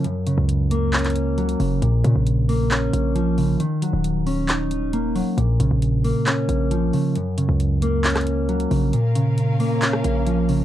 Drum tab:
HH |x---x---x---x---xxxxx---x-x-o---|x---x---x---o---x---x---x---o---|x---x---x---o---x---x---x---o---|x---x---x---o---x---x---x---o---|
CP |----------------x-x-------------|----------------x---------------|----------------x---------------|----------------x---------------|
SD |--------------------------------|--------------------------------|--------------------------------|--------------------------------|

HH |x---x---x---x---xxxxx---x-x-o---|x---x---x---o---x---x---x---o---|
CP |----------------x-x-------------|----------------x---------------|
SD |------------------r-------------|------------------r-------------|